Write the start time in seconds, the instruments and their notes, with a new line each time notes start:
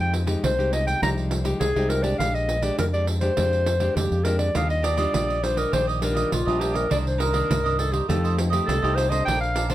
Already playing: fingered electric bass F2, nylon-string guitar F3 G#3 D#4 G4
0.00 clarinet G5, pandeiro
0.14 pandeiro
0.27 nylon-string guitar G#3 D#4 G4, pandeiro
0.43 fingered electric bass C2, nylon-string guitar C3, clarinet C5, pandeiro
0.58 nylon-string guitar G#3 D#4 G4, pandeiro
0.73 clarinet D#5, pandeiro
0.87 clarinet G5, pandeiro
1.02 fingered electric bass C2, nylon-string guitar F3 G#3 D#4 G4, clarinet A#5, pandeiro
1.18 pandeiro
1.31 pandeiro
1.44 nylon-string guitar G#3 D#4 G4, pandeiro
1.60 fingered electric bass C2, nylon-string guitar C3, clarinet G#4, pandeiro
1.76 fingered electric bass C2, nylon-string guitar G#3 D#4 G4, pandeiro
1.89 clarinet A#4, pandeiro
2.02 nylon-string guitar G#3 D4 G4, clarinet D5, pandeiro
2.19 fingered electric bass A#1, nylon-string guitar A#2, clarinet F5, pandeiro
2.34 clarinet D#5, pandeiro
2.49 pandeiro
2.62 nylon-string guitar G#3 D4 G4, clarinet D5, pandeiro
2.79 fingered electric bass F2, nylon-string guitar F2, clarinet A#4, pandeiro
2.93 nylon-string guitar G#3 D4 G4, clarinet D5, pandeiro
3.07 pandeiro
3.21 nylon-string guitar G#3 D4 G4, clarinet C5, pandeiro
3.37 fingered electric bass F2, nylon-string guitar A#2 G#3 D4 G4, pandeiro
3.53 pandeiro
3.66 pandeiro
3.80 nylon-string guitar G#3 D4 G4, pandeiro
3.95 fingered electric bass F2, nylon-string guitar F2, clarinet G4, pandeiro
4.11 fingered electric bass F2, pandeiro
4.24 nylon-string guitar G#3 D4 G4, clarinet A#4, pandeiro
4.38 clarinet D5, pandeiro
4.54 fingered electric bass D#2, nylon-string guitar D#3 G3 D4 F4, cavaquinho D4 G4 D5 D#5, clarinet F5, pandeiro
4.69 clarinet D#5, muted cavaquinho stroke, pandeiro
4.82 cavaquinho D4 G4 D5 D#5, clarinet D5, pandeiro
4.96 nylon-string guitar G3 D4 F4, cavaquinho G4 D5 D#5, pandeiro
5.12 fingered electric bass A#1, nylon-string guitar A#2, cavaquinho D4 G4 D5 D#5, pandeiro
5.27 cavaquinho G4 D5 D#5, pandeiro
5.43 nylon-string guitar G3 D4 F4, clarinet C5, pandeiro
5.56 cavaquinho G4 D5 D#5, clarinet A#4, pandeiro
5.72 fingered electric bass A#1, nylon-string guitar D#3, cavaquinho D4 G4 D5 D#5, clarinet C5, pandeiro
5.87 cavaquinho G4 D5 D#5, pandeiro
6.01 nylon-string guitar G3 D4 F4, clarinet A#4, muted cavaquinho stroke, pandeiro
6.14 cavaquinho G4 D5 D#5, pandeiro
6.32 fingered electric bass A#1, nylon-string guitar A#2, clarinet F4, pandeiro
6.45 fingered electric bass A#1, nylon-string guitar G3 D4 F4, cavaquinho G4 D5 D#5, pandeiro
6.59 cavaquinho D4 G4 D5 D#5, clarinet G4, pandeiro
6.73 cavaquinho G4 D5 D#5, clarinet A#4, pandeiro
6.90 fingered electric bass C2, nylon-string guitar C3 D#3 A#3 D4, cavaquinho D#4 A#4 C5 D#5, clarinet D5, pandeiro
7.05 clarinet C5, muted cavaquinho stroke, pandeiro
7.18 cavaquinho D#4 A#4 C5 D#5, clarinet A#4, pandeiro
7.33 nylon-string guitar D#3 A#3 D4, cavaquinho A#4 C5 D#5, pandeiro
7.49 fingered electric bass C2, nylon-string guitar G2, cavaquinho D#4 A#4 C5 D#5, pandeiro
7.64 nylon-string guitar D#3 A#3 D4, cavaquinho A#4 C5 D#5, pandeiro
7.78 clarinet A4, pandeiro
7.91 clarinet G4, cavaquinho A#4 C5 D#5, pandeiro
8.08 fingered electric bass F2, nylon-string guitar F3 A3 D#4 G4, cavaquinho F4 A4 C5 D#5, clarinet A4, pandeiro
8.24 cavaquinho A4 C5 D#5, pandeiro
8.37 muted cavaquinho stroke, pandeiro
8.50 nylon-string guitar A3 D#4 G4, cavaquinho A4 C5 D#5, pandeiro
8.66 fingered electric bass C2, nylon-string guitar C3, clarinet A4, pandeiro
8.82 fingered electric bass C2, nylon-string guitar A3 D#4 G4, cavaquinho A4 C5 D#5, pandeiro
8.95 cavaquinho F4 A4 C5 D#5, clarinet C5, pandeiro
9.09 nylon-string guitar D4 A4 C5, cavaquinho A4 C5 D#5, clarinet D#5, pandeiro
9.25 fingered electric bass A#1, nylon-string guitar A#3, cavaquinho A#4 D5 F5 A5, clarinet G5, pandeiro
9.41 clarinet F5, muted cavaquinho stroke, pandeiro
9.55 cavaquinho A#4 D5 F5 A5, pandeiro
9.68 nylon-string guitar D4 A4 C5, cavaquinho D5 F5 A5, pandeiro